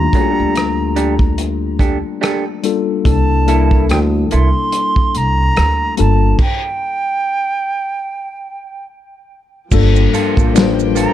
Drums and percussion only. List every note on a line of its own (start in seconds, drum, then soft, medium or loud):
0.13 kick medium
0.13 closed hi-hat medium
0.56 cross-stick medium
0.56 closed hi-hat medium
0.96 closed hi-hat medium
1.19 kick medium
1.38 closed hi-hat medium
1.79 kick medium
1.79 closed hi-hat medium
2.23 cross-stick medium
2.23 closed hi-hat medium
2.64 closed hi-hat medium
3.05 kick loud
3.05 closed hi-hat medium
3.48 closed hi-hat medium
3.71 kick medium
3.89 cross-stick medium
3.89 closed hi-hat medium
4.31 closed hi-hat medium
4.72 closed hi-hat medium
4.96 kick medium
5.15 closed hi-hat medium
5.57 cross-stick medium
5.57 closed hi-hat medium
5.97 closed hi-hat medium
6.39 kick loud
6.39 crash medium
9.71 kick loud
9.71 crash loud
9.71 maracas medium
9.96 maracas soft
10.14 closed hi-hat medium
10.14 maracas soft
10.37 kick medium
10.37 maracas soft
10.56 finger snap medium
10.56 snare loud
10.56 closed hi-hat medium
10.56 maracas medium
10.79 maracas soft
10.96 closed hi-hat medium
10.96 maracas medium